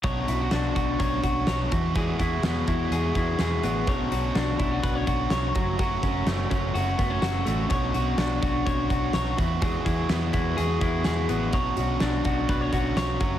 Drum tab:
HH |xxxxxxxx|xxxxxxxx|xxxxxxxx|xxxxxxxx|
SD |--o---o-|--o---o-|--o---o-|--o---o-|
BD |o--ooo-o|oo-o-o--|o--ooo-o|oo-o-o--|

HH |xxxxxxxx|xxxxxxxx|xxxxxxxx|
SD |--o---o-|--o---o-|--o---o-|
BD |o--ooo-o|oo-o-o--|o--ooo-o|